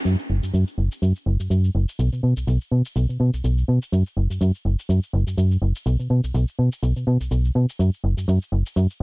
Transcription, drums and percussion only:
0.06 cabasa
0.19 cabasa
0.43 cabasa
0.54 cabasa
0.67 cabasa
0.92 cabasa
1.02 cabasa
1.16 cabasa
1.40 cabasa
1.51 cabasa
1.64 cabasa
1.89 cabasa
1.99 cabasa
2.13 cabasa
2.37 cabasa
2.48 cabasa
2.61 cabasa
2.85 cabasa
2.96 cabasa
3.10 cabasa
3.34 cabasa
3.44 cabasa
3.58 cabasa
3.82 cabasa
3.93 cabasa
4.06 cabasa
4.31 cabasa
4.41 cabasa
4.55 cabasa
4.79 cabasa
4.90 cabasa
5.03 cabasa
5.27 cabasa
5.38 cabasa
5.51 cabasa
5.76 cabasa
5.86 cabasa
6.00 cabasa
6.24 cabasa
6.35 cabasa
6.48 cabasa
6.72 cabasa
6.83 cabasa
6.96 cabasa
7.21 cabasa
7.31 cabasa
7.45 cabasa
7.69 cabasa
7.80 cabasa
7.94 cabasa
8.18 cabasa
8.28 cabasa
8.42 cabasa
8.66 cabasa
8.77 cabasa
8.90 cabasa

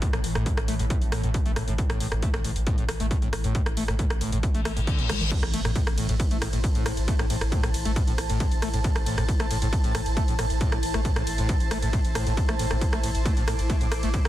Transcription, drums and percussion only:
0.02 kick, closed hi-hat
0.13 cross-stick, closed hi-hat
0.24 open hi-hat
0.35 cross-stick, closed hi-hat
0.46 kick, closed hi-hat
0.57 cross-stick, closed hi-hat
0.68 open hi-hat
0.79 closed hi-hat
0.90 kick, closed hi-hat
1.01 closed hi-hat
1.12 cross-stick, open hi-hat
1.23 closed hi-hat
1.34 kick, closed hi-hat
1.46 closed hi-hat
1.56 cross-stick, open hi-hat
1.68 closed hi-hat
1.78 kick, closed hi-hat
1.90 cross-stick, closed hi-hat
2.00 open hi-hat
2.12 cross-stick, closed hi-hat
2.22 kick, closed hi-hat
2.34 cross-stick, closed hi-hat
2.44 open hi-hat
2.56 closed hi-hat
2.67 kick, closed hi-hat
2.78 closed hi-hat
2.89 cross-stick, open hi-hat
3.00 closed hi-hat
3.11 kick, closed hi-hat
3.22 closed hi-hat
3.33 cross-stick, open hi-hat
3.44 closed hi-hat
3.55 kick, closed hi-hat
3.66 cross-stick, closed hi-hat
3.77 open hi-hat
3.88 cross-stick, closed hi-hat
3.99 kick, closed hi-hat
4.10 cross-stick, closed hi-hat
4.21 open hi-hat
4.32 closed hi-hat
4.43 kick, closed hi-hat
4.55 closed hi-hat
4.65 cross-stick, open hi-hat
4.77 closed hi-hat
4.87 kick, closed hi-hat
4.99 closed hi-hat
5.09 cross-stick, open hi-hat, high tom
5.21 closed hi-hat, mid tom
5.31 kick, closed hi-hat, ride, crash
5.43 cross-stick, closed hi-hat, ride
5.54 open hi-hat, ride
5.65 cross-stick, closed hi-hat, ride
5.76 kick, closed hi-hat, ride
5.87 cross-stick, closed hi-hat, ride
5.98 open hi-hat, ride
6.09 closed hi-hat, ride
6.20 kick, closed hi-hat, ride
6.31 closed hi-hat, ride
6.42 cross-stick, open hi-hat, ride
6.53 closed hi-hat, ride
6.64 kick, closed hi-hat, ride
6.75 closed hi-hat, ride
6.86 cross-stick, open hi-hat, ride
6.97 closed hi-hat, ride
7.08 kick, closed hi-hat, ride
7.19 cross-stick, closed hi-hat, ride
7.30 open hi-hat, ride
7.41 cross-stick, closed hi-hat, ride
7.52 kick, closed hi-hat, ride
7.63 cross-stick, closed hi-hat, ride
7.74 open hi-hat, ride
7.85 closed hi-hat, ride
7.96 kick, closed hi-hat, ride
8.07 closed hi-hat, ride
8.18 cross-stick, open hi-hat, ride
8.29 closed hi-hat, ride
8.40 kick, closed hi-hat, ride
8.51 closed hi-hat, ride
8.62 cross-stick, open hi-hat, ride
8.74 closed hi-hat, ride
8.84 kick, closed hi-hat, ride
8.96 cross-stick, closed hi-hat, ride
9.06 open hi-hat, ride
9.18 cross-stick, closed hi-hat, ride
9.29 kick, closed hi-hat, ride
9.40 cross-stick, closed hi-hat, ride
9.51 open hi-hat, ride
9.62 closed hi-hat, ride
9.73 kick, closed hi-hat, ride
9.84 closed hi-hat, ride
9.95 cross-stick, open hi-hat, ride
10.06 closed hi-hat, ride
10.17 kick, closed hi-hat, ride
10.28 closed hi-hat, ride
10.39 cross-stick, open hi-hat, ride
10.50 closed hi-hat, ride
10.61 kick, closed hi-hat, ride
10.72 cross-stick, closed hi-hat, ride
10.83 open hi-hat, ride
10.94 cross-stick, closed hi-hat, ride
11.05 kick, closed hi-hat, ride
11.16 cross-stick, closed hi-hat, ride
11.27 open hi-hat, ride
11.38 closed hi-hat, ride
11.49 kick, closed hi-hat, ride
11.60 closed hi-hat, ride
11.71 cross-stick, open hi-hat, ride
11.82 closed hi-hat, ride
11.93 kick, closed hi-hat, ride
12.05 closed hi-hat, ride
12.15 cross-stick, open hi-hat, ride
12.27 closed hi-hat, ride
12.37 kick, closed hi-hat, ride
12.49 cross-stick, closed hi-hat, ride
12.59 open hi-hat, ride
12.71 cross-stick, closed hi-hat, ride
12.81 kick, closed hi-hat, ride
12.93 cross-stick, closed hi-hat, ride
13.04 open hi-hat, ride
13.15 closed hi-hat, ride
13.26 kick, closed hi-hat, ride
13.37 closed hi-hat, ride
13.48 cross-stick, open hi-hat, ride
13.59 closed hi-hat, ride
13.70 kick, closed hi-hat, ride
13.81 closed hi-hat, ride
13.92 cross-stick, open hi-hat, ride
14.03 closed hi-hat, ride
14.14 kick, closed hi-hat, ride
14.25 cross-stick, closed hi-hat, ride

